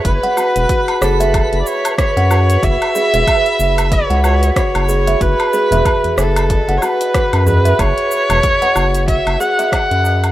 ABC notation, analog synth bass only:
X:1
M:4/4
L:1/16
Q:"Swing 16ths" 1/4=93
K:F#m
V:1 name="Analog synth bass" clef=bass
F,,, z2 E,,, z2 F,,,3 F,,, z3 F,,3 | F,,, z2 E,,, z2 F,,,3 C,,3 z F,,,3 | F,,, z2 E,,, z2 F,,,3 F,,, z3 F,,3 | F,,, z2 E,,, z2 F,,,3 F,,, z3 F,,3 |]